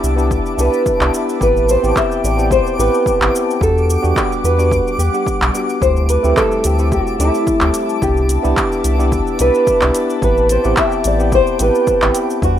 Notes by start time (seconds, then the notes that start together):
Already playing: B3 D4 E4 G4 B4 E5 A5 D6
0.03 C2, shaker
0.16 B3 D4 E4 G4, shaker
0.31 kick, shaker
0.46 shaker
0.57 C2 B3 D4 E4 G4 B4, shaker
0.73 shaker
0.86 kick, shaker
0.99 C2 B3 D4 E4 G4, clap, shaker
1.14 shaker
1.29 shaker
1.40 A1 B3 C4 E4 G4 B4 G5, kick, shaker
1.57 shaker
1.69 C5, shaker
1.83 A1 B3 C4 E4 G4, shaker
1.96 E5, kick, clap, shaker
2.12 shaker
2.24 A1 D5, shaker
2.37 B3 C4 E4 G4, shaker
2.51 C5, kick, shaker
2.67 shaker
2.78 A1 B3 C4 E4 G4 B4, shaker
2.94 shaker
3.06 kick, shaker
3.19 A1 B3 C4 E4 G4, clap, shaker
3.35 shaker
3.51 shaker
3.60 E2 G3 B3 D4 F#4 G4 A4 F#5 D6, kick, shaker
3.78 shaker
3.90 shaker
4.02 E2 B3 D4 F#4 G4, shaker
4.16 G4, kick, clap, shaker
4.32 shaker
4.44 E2 B4, shaker
4.58 B3 D4 F#4 G4, shaker
4.71 kick, shaker
4.88 shaker
4.98 E2 G4, shaker
5.13 B3 D4 G4 F#5, shaker
5.26 kick, shaker
5.41 B1, clap, shaker
5.54 B3 D4 F#4 G4, shaker
5.69 shaker
5.81 D2 A3 C4 E4 G4 C5 E5 A5, kick, shaker
5.97 shaker
6.09 B4, closed hi-hat, shaker
6.23 D2 A3 C4 E4 G4, shaker
6.37 A4, kick, clap, shaker
6.52 shaker
6.64 D2 G4, closed hi-hat, shaker
6.78 A3 C4 E4 G4, shaker
6.92 F#4, kick, shaker
7.07 shaker
7.19 D2 A3 C4 E4 G4, closed hi-hat, shaker
7.35 shaker
7.47 kick, shaker
7.61 D2 A3 C4 E4 G4, clap, shaker
7.74 closed hi-hat, shaker
7.89 shaker
8.01 C2 B3 D4 E4 G4 B4 E5, kick, shaker
8.17 shaker
8.29 closed hi-hat, shaker
8.43 C2 B3 D4 E4 G4, shaker
8.57 kick, clap, shaker
8.72 shaker
8.84 C2, closed hi-hat, shaker
8.98 B3 D4 E4 G4, shaker
9.12 kick, shaker
9.27 shaker
9.39 C2 B3 D4 E4 G4 B4, closed hi-hat, shaker
9.55 shaker
9.67 kick, shaker
9.80 C2 B3 D4 E4 G4, clap, shaker
9.94 closed hi-hat, shaker
10.10 shaker
10.21 A1 B3 C4 E4 G4 B4 G5, kick, shaker
10.37 shaker
10.49 C5, closed hi-hat, shaker
10.64 A1 B3 C4 E4 G4, shaker
10.77 E5, kick, clap, shaker
10.92 shaker
11.04 A1 D5, closed hi-hat, shaker
11.18 B3 C4 E4 G4, shaker
11.32 C5, kick, shaker
11.47 shaker
11.59 A1 B3 C4 E4 G4 B4, closed hi-hat, shaker
11.75 shaker
11.87 kick, shaker
12.01 A1 B3 C4 E4 G4, clap, shaker
12.15 closed hi-hat, shaker
12.30 shaker
12.42 E2 G3 B3 D4 F#4 F#5 D6, kick, shaker